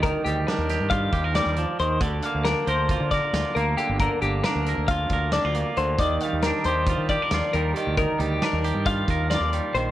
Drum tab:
HH |xxxxxxxxx|xxxxxxxxx|xxxxxxxxx|xxxxxxxxx|
SD |--oo--o--|--o--oo--|--o---o--|--o---o--|
BD |o---oo---|o---oo---|o---oo---|o---oo---|

HH |xxxxxxxxx|
SD |--o---o--|
BD |o---oo---|